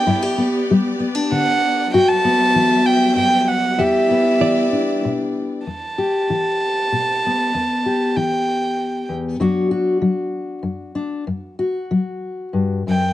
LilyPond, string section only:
\new Staff \with { instrumentName = "String section" } { \time 3/4 \key e \minor \tempo 4 = 96 << { <g' d''>2. | <fis e''>2. | <e' d''>2. | r2. |
r2. | r2. | r2. | } \\ { b2. | g2.~ | g2. | r2. |
r2. | r2. | r2. | } >> }